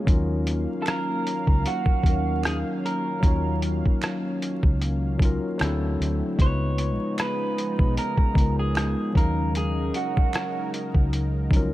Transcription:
Already playing: F#3 A#3
0.05 D#2 D#3 F#3 C#4 D#4 F5, kick, closed hi-hat
0.10 F4 A#4
0.47 closed hi-hat
0.82 A4, finger snap
0.87 A#4, cross-stick, closed hi-hat
1.27 closed hi-hat
1.47 C#2, kick
1.66 F#4, closed hi-hat
1.86 kick
2.02 D#2 F#3 C#4 D#4, kick
2.06 A#4 F5, closed hi-hat
2.44 G#4, finger snap, cross-stick, closed hi-hat
2.86 A#4, closed hi-hat
3.20 D#2 F#3 C#4 D#4, kick, closed hi-hat
3.26 F4 C#5
3.62 closed hi-hat
3.86 kick
4.02 finger snap, cross-stick, closed hi-hat
4.42 closed hi-hat
4.63 C#2, kick
4.82 closed hi-hat
5.18 F#3 C#4 D#4, kick
5.22 F4 A#4, closed hi-hat
5.58 D2 D3 F#3 A3 C4 D4 E4, finger snap, cross-stick
5.62 E4 A4, closed hi-hat
6.00 D2, closed hi-hat
6.37 C#2 C#3 F3 G#3 B3 D#4, kick, closed hi-hat
6.42 F4 B4 C#5
6.78 closed hi-hat
7.18 B4, finger snap, cross-stick, closed hi-hat
7.58 closed hi-hat
7.79 B1, kick
7.97 A#4, closed hi-hat
8.18 kick
8.34 C#2 G#3 B3 D#4, kick, closed hi-hat
8.39 F4 A#4
8.59 G#4
8.75 finger snap, cross-stick, closed hi-hat
9.13 D#2 F#3 C#4 D#4 A#4, kick
9.17 A#4 F5, closed hi-hat
9.55 G#4, closed hi-hat
9.94 F#4, closed hi-hat
10.17 kick
10.33 finger snap, cross-stick, closed hi-hat
10.74 closed hi-hat
10.94 C#2, kick
11.13 closed hi-hat
11.49 F3 C#4 D#4, kick, closed hi-hat
11.55 F#3 F4 A#4

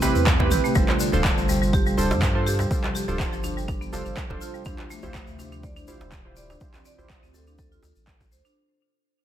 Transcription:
Already playing: C3 G4 B4
0.02 A1 C4 E4 G4 B4, djembe slap, shaker
0.15 E2, shaker
0.26 kick, clap, shaker
0.40 C4 E4 G4 B4, kick, djembe slap
0.51 A1 G4, mid tom, shaker
0.64 A3, shaker
0.75 G1 G3 D4 F4 A4 C5, kick, shaker
0.88 clap, djembe slap
1.00 D3, shaker
1.12 D1 D4 F4 A4 C5, djembe tone, shaker
1.24 D3, kick, clap, shaker
1.37 G1, shaker
1.49 G3, djembe tone, shaker
1.62 G3, shaker
1.73 G4, kick, shaker
1.86 G3, shaker
1.98 D1 D4 F4 A4 C5, djembe tone, shaker
2.11 G2, djembe slap, shaker
2.22 kick, clap, djembe tone, shaker
2.35 D4 F4 A4 C5
2.47 G4, shaker
2.59 G3, djembe slap, shaker
2.71 D4 F4 G4 A4 C5, kick, shaker
2.84 F3, clap, djembe slap
2.95 G4, shaker
3.08 D1 D4 F4 A4 C5, djembe tone, shaker
3.20 kick, clap, shaker
3.33 G1 F3, shaker
3.44 D4, djembe tone, shaker
3.57 G3, shaker
3.68 D4, kick, djembe tone, shaker
3.81 B3, shaker
3.93 F1 D4 F4 A4 C5, djembe slap, shaker
4.06 G1, shaker
4.17 kick, clap, shaker
4.30 F1 D4 F4 A4 C5, kick, djembe slap
4.41 F4, shaker
4.54 G3, shaker
4.65 D2 C3 F3 D4 E4 F4 G4 C5 E5, kick, shaker
4.78 clap, djembe slap
4.90 A3, shaker
5.02 A1 E4 F4 G4 C5, djembe tone, shaker
5.14 A3, kick, clap, shaker
5.27 D2, shaker
5.39 D4, djembe tone, shaker
5.52 D4, shaker
5.63 D5, kick, shaker
5.76 D4, shaker
5.88 A1 E4 F4 G4 C5, djembe tone, shaker
6.01 D1, djembe slap, shaker
6.12 kick, clap, djembe tone, shaker
6.25 E4 F4 G4 C5
6.36 D5, shaker
6.50 D4, djembe slap, shaker
6.60 E4 F4 G4 C5, kick, shaker
6.74 C4, clap, djembe slap, shaker
6.85 D5, shaker
6.98 A1 E4 F4 G4 C5, djembe tone, shaker
7.10 kick, clap, shaker
7.23 D2 C4, shaker
7.34 A4, djembe tone, shaker
7.47 D4, shaker
7.58 A4, kick, djembe tone, shaker
7.72 F4, shaker
7.83 D2, djembe slap, shaker
7.96 A1, shaker
8.07 kick, clap, shaker
8.20 kick, djembe slap, shaker
8.32 D2 C5, shaker
8.45 D4, shaker

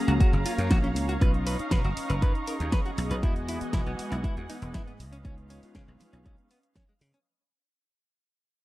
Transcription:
Already playing: F#3 A#3 C#4 G#4 F5 A#5
0.08 C#2 F#4, closed hi-hat
0.20 F#4, muted slap bass stroke, kick, closed hi-hat
0.33 F#1, closed hi-hat
0.45 A#3 C#4 F4 C#5 F5, open hi-hat
0.58 F#2, closed hi-hat
0.71 A#1 F#4, kick, snare, closed hi-hat
0.84 C#4, closed hi-hat
0.96 C#2, open hi-hat
1.09 F#4, closed hi-hat
1.21 B1 C#4 D#4 F4 B4 D#5 A#5 C#6, kick, closed hi-hat
1.34 closed hi-hat
1.47 B4, open hi-hat
1.59 C#4 D#4 F5, muted slap bass stroke, closed hi-hat
1.71 B2 B4, kick, snare, closed hi-hat
1.84 F#1 F#4, closed hi-hat
1.97 open hi-hat
2.10 F#1 B4, closed hi-hat
2.22 F#2 B4, kick, closed hi-hat
2.35 closed hi-hat
2.47 C#4 D#4 G#4 A#4, open hi-hat
2.60 D#2, closed hi-hat
2.72 B4, kick, snare, closed hi-hat
2.86 F#4, closed hi-hat
2.98 B1, open hi-hat
3.11 B1 B4, closed hi-hat
3.22 E2 E3 G#3 B3 E4 F#4 D#5 F#5 G#5, kick, closed hi-hat
3.36 closed hi-hat
3.49 E4, open hi-hat
3.60 G#3 B3 F#4 D#5, muted slap bass stroke, closed hi-hat
3.73 E1 E4, kick, snare, closed hi-hat
3.86 B1 B3, closed hi-hat
3.99 open hi-hat
4.12 B1 E4, closed hi-hat
4.24 E4, kick, closed hi-hat
4.37 E2, closed hi-hat
4.49 G#3 B3 D#4 B4 D#5, open hi-hat
4.62 E1, closed hi-hat
4.74 G#2 E4, kick, snare, closed hi-hat
4.87 B3, closed hi-hat
5.00 C#2 C#4 B4 F5, open hi-hat
5.12 C#4, closed hi-hat
5.24 C#2 G#3 B3 C#4 D#4 F4, kick, closed hi-hat
5.38 closed hi-hat
5.50 C#4, open hi-hat
5.62 G#3 B3 D#4 F4, muted slap bass stroke, open hi-hat
5.75 C#3 C#4, kick, snare, closed hi-hat
5.88 B1 G#3, closed hi-hat
6.00 muted slap bass stroke, snare, open hi-hat
6.13 B1 C#4, closed hi-hat
6.26 B1 C#4, kick, closed hi-hat
6.38 closed hi-hat
6.51 B3, open hi-hat
6.63 closed hi-hat
6.76 C#4, kick, snare, closed hi-hat
6.89 G#3, closed hi-hat
7.01 C#3, open hi-hat
7.14 C#4, closed hi-hat

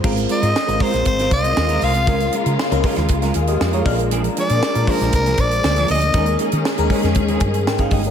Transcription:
0.03 G#1 G#3 C4 F4 A#4, kick, crash
0.17 muted clean electric guitar stroke, closed hi-hat
0.29 G#3 C4 F4 A#4 D#5, closed hi-hat
0.42 G#2 G#3 C4 F4 A#4, closed hi-hat
0.55 muted clean electric guitar stroke, snare
0.67 G#1 G#3 C4 F4 A#4, muted clean electric guitar stroke, closed hi-hat
0.79 G#3 C4 F4 A#4 C5, kick, open hi-hat
0.93 A#1 G#3 C4 F4 A#4, snare, closed hi-hat
1.05 G#1 C5, kick, closed hi-hat
1.19 G#3 C4 F4 A#4, snare, closed hi-hat
1.31 C2 D#5, kick, closed hi-hat
1.44 muted clean electric guitar stroke, closed hi-hat
1.57 D#2, muted clean electric guitar stroke, snare
1.69 G#3 C4 F4 A#4, closed hi-hat
1.81 C2 G#3 C4 F4 A#4 F5, open hi-hat
1.94 muted clean electric guitar stroke, closed hi-hat
2.07 C#2 C#3 G#3 A#3 C#4 F4 A#4, kick, closed hi-hat
2.20 muted clean electric guitar stroke, closed hi-hat
2.32 G#3 C#4 F4 A#4, closed hi-hat
2.46 C#3 G#3 C#4 F4 A#4, closed hi-hat
2.59 snare
2.71 C#2 G#3 C#4 F4 A#4, muted clean electric guitar stroke, closed hi-hat
2.84 G#3 C#4 F4 A#4, kick, open hi-hat
2.96 D#2 G#3 C#4 F4, snare, closed hi-hat
3.08 C#2, muted clean electric guitar stroke, kick, closed hi-hat
3.22 G#3 C#4 F4 A#4, snare, closed hi-hat
3.34 D#2 G#4 F5, muted clean electric guitar stroke, closed hi-hat
3.47 G4 D#5, muted clean electric guitar stroke, closed hi-hat
3.61 F2, muted clean electric guitar stroke, snare
3.73 G#3 C#4 F4 A#4 C#5, closed hi-hat
3.85 A#1 G#3 A#3 D4 F4 G#4 A#4, kick, open hi-hat
3.99 muted clean electric guitar stroke, closed hi-hat
4.11 F3 A#3 D4 G#4, closed hi-hat
4.24 muted clean electric guitar stroke, closed hi-hat
4.37 F3 A#3 D4 G#4 D5, closed hi-hat
4.49 A#2 F3 A#3 D4 G#4, closed hi-hat
4.63 snare
4.74 A#2 G#3 D4 F4 A#4, muted clean electric guitar stroke, closed hi-hat
4.87 F3 G#3 A#3 D4 F4 G#4 A#4 C5, kick, open hi-hat
5.00 A#1 F3 A#3 D4 G#4, snare, closed hi-hat
5.13 C2 A#4, kick, closed hi-hat
5.26 F3 A#3 D4 G#4, closed hi-hat
5.37 A#1 D5, kick, closed hi-hat
5.51 muted clean electric guitar stroke, closed hi-hat
5.64 D2, muted clean electric guitar stroke, snare
5.76 F3 A#3 D4 G#4, closed hi-hat
5.88 D2 F3 A#3 D4 G#4 D#5, open hi-hat
6.01 muted clean electric guitar stroke, closed hi-hat
6.14 D#2 D#3 G#3 C#4 D#4 G#4 A#4, kick, closed hi-hat
6.26 muted clean electric guitar stroke, closed hi-hat
6.39 G#3 C#4 D#4 G#4, closed hi-hat
6.52 D#3 G#3 C#4 D#4 G#4, closed hi-hat
6.65 snare
6.77 D#2 G#3 C#4 D#4 A#4, muted clean electric guitar stroke, closed hi-hat
6.90 G#3 C#4 D#4 G#4 A#4, kick, open hi-hat
7.03 F2 G#3 C#4 D#4 G#4, snare, closed hi-hat
7.15 D#2, kick, closed hi-hat
7.28 G#3 C#4 D#4 G#4, closed hi-hat
7.40 G2, kick, closed hi-hat
7.54 muted clean electric guitar stroke, closed hi-hat
7.67 G#2 A#4 G5, muted clean electric guitar stroke, snare
7.78 G#3 C#4 D#4 G#4 F5, kick, closed hi-hat
7.91 G1 G#3 C#4 D#4 G4 G#4 D#5, kick, open hi-hat
8.04 C#4 A#4, muted clean electric guitar stroke, closed hi-hat

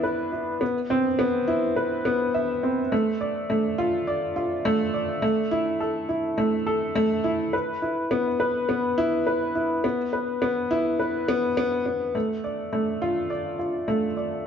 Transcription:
Already playing: B3 D4 E4 B4
0.03 B4
0.32 E4
0.61 B3
0.90 C4
1.19 B3
1.48 E4
1.76 B4
2.05 B3
2.34 E5
2.63 C4
2.92 A3
3.21 D5
3.50 A3
3.78 F4
4.07 D5
4.36 F4
4.65 A3
4.94 D5
5.22 A3
5.51 E4
5.80 A4
6.09 E4
6.38 A3
6.67 A4
6.95 A3
7.24 E4
7.53 B4
7.82 E4
8.11 B3
8.40 B4
8.69 B3
8.98 E4
9.27 B4
9.55 E4
9.84 B3
10.13 B4
10.42 B3
10.71 E4
10.99 B4
11.29 B3
11.57 B3
11.86 B3
12.15 A3
12.44 D5
12.73 A3
13.02 F4
13.30 D5
13.59 F4
13.88 A3
14.17 D5

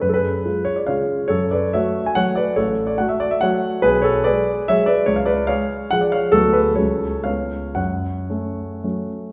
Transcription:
0.01 F#2 B4
0.09 A4
0.14 G#4 B4
0.45 G#3 F4
0.65 C#5
0.76 D5
0.87 C#3 G#3 F4 C#5 F5
1.28 F#2 A4 C#5
1.51 B4 D5
1.73 A3 F#4 C#5 E5
2.06 G#5
2.15 F#3 A3 F#4 C#5 F#5
2.36 B4 D5
2.56 A1 A4 C#5
2.87 D5
2.98 A3 F#4 F#5
3.09 E5
3.20 D5
3.31 E5
3.41 F#3 A3 F#4 C#5 F#5
3.82 B1 G#4 B4
4.02 A4 C#5
4.24 G#3 G#4 B4 D5
4.68 F#3 G#3 G#4 C#5 E5
4.86 B4 D5
5.06 C#2 C#5
5.16 F5
5.26 B4 D5
5.47 G#3 G#4 C#5 F5
5.91 F3 G#3 G#4 F#5
6.01 D5
6.12 C#5 F5
6.32 D2 F#3 B3 F#4 A4
6.53 G#4 B4
6.76 C#2 F#3 A3 C#4 A4 C#5
7.24 C#2 G#3 B3 C#4 C#5 F5
7.75 F#2 C#5 F#5
8.30 A3 C#4
8.84 F#3 A3 C#4

